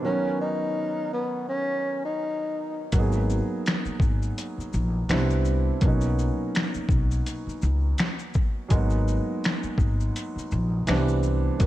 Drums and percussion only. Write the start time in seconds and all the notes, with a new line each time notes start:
2.92 kick, closed hi-hat, shaker
3.12 shaker
3.30 shaker
3.66 finger snap, snare, closed hi-hat, shaker
3.85 shaker
4.00 kick, shaker
4.22 shaker
4.38 closed hi-hat, shaker
4.60 shaker
4.73 shaker
5.09 finger snap, snare, closed hi-hat, shaker
5.30 shaker
5.45 shaker
5.81 kick, closed hi-hat, shaker
6.01 shaker
6.19 shaker
6.55 finger snap, snare, closed hi-hat, shaker
6.74 shaker
6.89 kick, shaker
7.11 shaker
7.26 closed hi-hat, shaker
7.49 shaker
7.62 shaker
7.98 finger snap, snare, closed hi-hat, shaker
8.19 shaker
8.34 kick, shaker
8.70 kick, closed hi-hat, shaker
8.90 shaker
9.08 shaker
9.44 finger snap, snare, closed hi-hat, shaker
9.63 shaker
9.78 kick, shaker
10.00 shaker
10.16 closed hi-hat, shaker
10.38 shaker
10.51 shaker
10.87 finger snap, snare, closed hi-hat, shaker
11.08 shaker
11.23 shaker
11.60 kick, closed hi-hat, shaker